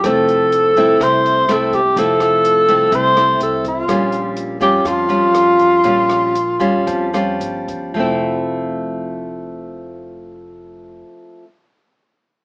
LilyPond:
<<
  \new Staff \with { instrumentName = "Alto saxophone" } { \time 4/4 \key f \major \tempo 4 = 119 a'2 c''4 a'8 g'8 | a'2 c''4 a'8 f'8~ | f'4 r8 g'8 f'2~ | f'2. r4 |
r1 | r1 | }
  \new Staff \with { instrumentName = "Nylon-string guitar" } { \time 4/4 \key f \major << { <a c' e'>4. <a c' e'>4. <a c' e'>8 r8 | <a c' e'>4. <a c' e'>4 <a c' e'>4. | <g des' f'>4. <g des' f'>4 <g des' f'>4. | <g des' f'>4 r8 <g des' f'>4 <g des' f'>4. |
<f a c' e'>1~ | <f a c' e'>1 | } \\ { f2 c2 | f2 c2 | bes,2 f2 | bes,2 f2 |
r1 | r1 | } >> }
  \new Staff \with { instrumentName = "Upright bass" } { \clef bass \time 4/4 \key f \major f,,4. c,8 c,4 c,4 | f,,4. c,8 c,4 c,4 | bes,,4. f,8 f,4 f,4 | bes,,4. f,8 f,4 g,,4 |
f,,1~ | f,,1 | }
  \new DrumStaff \with { instrumentName = "Drums" } \drummode { \time 4/4 <hh bd ss>8 hh8 hh8 hh8 <hh bd ss>8 hh8 <hh ss>8 <hh bd>8 | <hh bd>8 <hh ss>8 hh8 hh8 <hh bd>8 <hh ss>8 hh8 <hh bd>8 | <hh bd ss>8 hh8 hh8 hh8 <hh bd ss>8 hh8 <hh ss>8 <hh bd>8 | <hh bd>8 <hh ss>8 hh8 <hh bd>8 <hh bd>8 <hh ss>8 hh8 <hh bd>8 |
r4 r4 r4 r4 | r4 r4 r4 r4 | }
>>